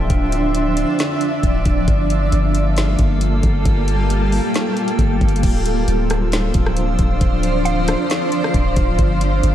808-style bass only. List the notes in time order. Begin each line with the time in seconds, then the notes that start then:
0.10 D1
1.43 D1
1.66 D1
1.88 G1
2.32 G1
2.99 G1
3.43 G1
3.66 G1
4.99 G1
5.21 G1
5.43 D1
5.88 D1
6.55 D1
6.99 D1
7.21 D1
8.54 D1
8.77 D1
8.99 G1
9.43 G1